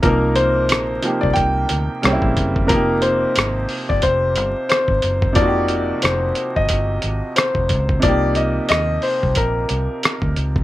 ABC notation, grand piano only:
X:1
M:4/4
L:1/16
Q:"Swing 16ths" 1/4=90
K:Cm
V:1 name="Grand piano"
B2 c4- c d g6 z2 | B2 c4- c d c4 c4 | d4 c3 e4- e c4 | d2 e2 e2 c2 B6 z2 |]